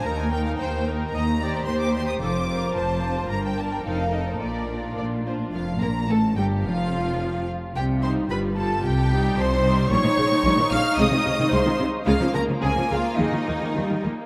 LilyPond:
<<
  \new Staff \with { instrumentName = "Violin section" } { \time 2/4 \key ees \major \tempo 4 = 110 bes''16 aes''16 g''16 f''16 g''8 r8 | \key c \dorian bes''4 c'''16 d'''16 c'''16 ees'''16 | d'''4 a''4 | bes''16 g''16 a''16 g''16 f''8 ees''16 c''16 |
bes'4 r4 | f''8 bes''8 a''8 g''8 | f''4. r8 | g''8 c'''8 b''8 a''8 |
g''4 c'''4 | \key ees \mixolydian des'''4. f'''8 | ees'''4 c'''8 r8 | f''8 bes''8 aes''8 f''8 |
ees''4. r8 | }
  \new Staff \with { instrumentName = "Violin section" } { \time 2/4 \key ees \major <ees' bes'>8 <ees' bes'>4 <ees' bes'>8 | \key c \dorian r8 <g' c''>4 <g' c''>8 | <f' c''>8 <f' c''>4 <f' c''>8 | r8 <d' bes'>8 <ees' a'>8 <ees' a'>8 |
r8 <d' f'>4 <d' f'>8 | f'8 bes'8 a'8 g'8 | f'4. r8 | g'8 c''8 b'8 a'8 |
g'4 c''4 | \key ees \mixolydian des''4. f''8 | ees''4 c''8 r8 | f'8 bes'8 aes'8 f'8 |
ees'4. r8 | }
  \new Staff \with { instrumentName = "Viola section" } { \clef bass \time 2/4 \key ees \major << { bes'4 c''8 bes'8 | \key c \dorian ees''8 d''8 c''4 | a'8 bes'8 c''4 | bes'2 |
d''4 d''8 c''8 | f8 bes8 a8 g8 | f4. r8 | r8 ees'8 f'8 f'8 |
r8 ees'4 ees'8 | \key ees \mixolydian ees'2~ | ees'2 | bes2~ |
bes4 g8 bes8 | } \\ { r2 | r2 | r2 | r2 |
r2 | r2 | r2 | r8 g8 g8 g8 |
r8 g4 g8 | g16 ees16 des16 ees16 g16 ees16 des16 r16 | aes16 ees16 c16 ees16 aes16 ees16 c16 r16 | aes16 f16 des16 f16 aes16 f16 des16 r16 |
aes16 ees16 ees16 ees16 r4 | } >> }
  \new Staff \with { instrumentName = "Cello section" } { \clef bass \time 2/4 \key ees \major ees,4 ees,4 | \key c \dorian ees,4 ees,4 | f,4 f,4 | g,4 f,4 |
bes,4 bes,4 | f,8 bes,8 a,8 g,8 | f,4. r8 | c4 g,4 |
c4 c4 | \key ees \mixolydian bes,16 bes,16 bes,16 bes,16 bes,16 bes,16 bes,16 r16 | c16 c16 c16 c16 c16 c16 c16 r16 | des16 des16 des16 des16 des16 des16 des16 r16 |
ees16 ees16 ees16 ees16 ees16 ees16 ees16 r16 | }
  \new Staff \with { instrumentName = "Double bass section" } { \clef bass \time 2/4 \key ees \major ees,4 ees,4 | \key c \dorian ees,4 ees,4 | f,,4 f,,4 | g,,4 f,,4 |
bes,,4 bes,,4 | f,,8 bes,,8 a,,8 g,,8 | f,,4. r8 | c,4 g,,4 |
c,4 c,4 | \key ees \mixolydian bes,,16 r16 bes,,16 r16 bes,,16 r16 bes,,16 r16 | c,16 r16 c,16 r16 c,16 r16 c,16 r16 | des,16 r16 des,16 r16 des,16 r16 des,16 r16 |
ees,16 r16 ees,16 r16 ees,16 r16 ees,16 r16 | }
>>